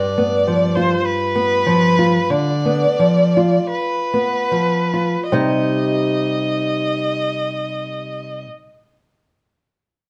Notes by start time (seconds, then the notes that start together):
Already playing: G2 D5
0.18 B3
0.47 F3
0.75 F4 C5
1.05 B4
1.35 B3
1.66 F3
1.99 F4
2.30 D3 D5
2.65 B3
2.99 F3
3.37 F4
3.72 B4
4.14 B3
4.51 F3
4.93 F4
5.30 C3 G3 D#4 G4 C5 D#5